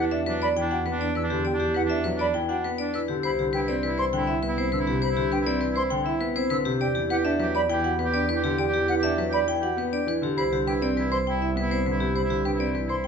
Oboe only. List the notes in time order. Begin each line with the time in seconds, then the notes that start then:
0.00 D4
0.29 D4
0.61 D4
0.92 D4
1.24 D4
1.54 D4
1.86 D4
2.16 D4
2.49 D4
2.79 D4
3.25 E4
3.55 E4
3.86 E4
4.18 E4
4.48 E4
4.80 E4
5.11 E4
5.41 E4
5.72 E4
6.03 E4
6.34 E4
6.80 G4
7.11 G4
7.42 G4
7.73 G4
8.05 G4
8.36 G4
8.68 G4
8.99 G4
9.30 G4
9.60 G4
9.92 G4
10.37 E4
10.68 E4
10.99 E4
11.30 E4
11.62 E4
11.92 E4
12.24 E4
12.55 E4
12.86 E4